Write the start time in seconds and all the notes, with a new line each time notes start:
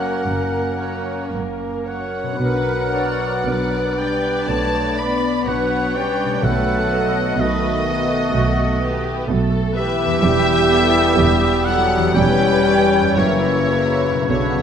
Already playing: F#1 F#2 F#3 A#3 C#4 A#4 C#5 F#5
0.26 F#1 F#2 A#3 A#4
0.81 C#4 C#5
1.34 F#1 F#2 A#3 A#4
1.87 F#3 C#4 A#4 C#5 F#5
2.23 B2
2.27 B3
2.32 D4
2.36 D4 B4
2.40 B1 B2 B3 B4
2.93 D4 C#5 D5
3.46 B1 B2 B3 B4 D5
3.96 G3 D4 B4 D5 G5
4.47 B1 B2 A3 B3 B4 C#5 A5
4.95 D4 D5 B5
4.99 B3 B5
5.45 B1 B2 F#3 B3 D4 B4 C#5 F#5
5.93 G3 C#4 D4 B4 D5 G5
6.25 B2
6.30 A3
6.34 F#4
6.38 B1 A4 B4 F#5
6.43 B2 F#3 A3 B3 A4 B4 F#5
6.91 B3 B4 D#5
7.37 B1 B2 D#3 A3 B3 F#4 A4 B4 D#5
7.85 B3 A4 B4
8.32 B1 B2 A3 F#4 A4
8.81 B3 G4 B4
9.28 B1 B2 A3 A4
9.74 E3 B3 G4 B4 E5
10.05 E2
10.10 G3
10.14 E4
10.19 E1 G3 B3 G4 B4
10.23 E2 G3 G4
10.70 B3 E4 A4
11.18 E1 E2 G3 G4
11.65 F#3 B3 E4 A4 F#5
11.98 E2
12.02 G3
12.07 E4
12.11 C#4 C#5 G5
12.15 E1 E2 G3 E4 G4 B4 G5
12.66 C#4 E4
13.00 F#2
13.04 F#3
13.09 E4
13.13 F#2 A#4 C#5
13.17 F#1 C#3 E3 A#3 C#4 E4 A#4 C#5
13.73 A#3 F#4
14.11 B2
14.16 F#3
14.20 D4
14.25 B4
14.29 B1 B2 C#3 D3 F#3 B3 D4 E4 F#4 C#5
14.38 B2
14.47 B2
14.56 B2